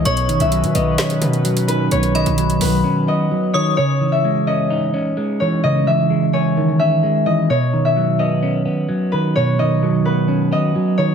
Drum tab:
HH |xxxxxxx-xxxxxxx-|xxxxxxo---------|----------------|----------------|
SD |--------o-------|----------------|----------------|----------------|

HH |----------------|----------------|
SD |----------------|----------------|